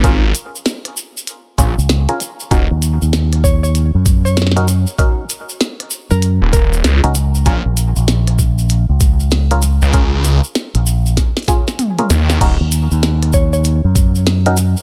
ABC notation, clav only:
X:1
M:4/4
L:1/16
Q:"Swing 16ths" 1/4=97
K:Ebm
V:1 name="Clav"
[DFAB]2 z8 [DFAd] z2 [DFAB] z2 | [DEGB]2 z8 z3 [DEGB] z2 | [DEGB]2 z8 z3 [DEGB] z2 | [DFAB]2 z8 z3 [DFAB] z2 |
[DFAB]2 z8 [DFAd] z2 [DFAB] z2 | [DEGB]2 z8 z3 [DEGB] z2 |]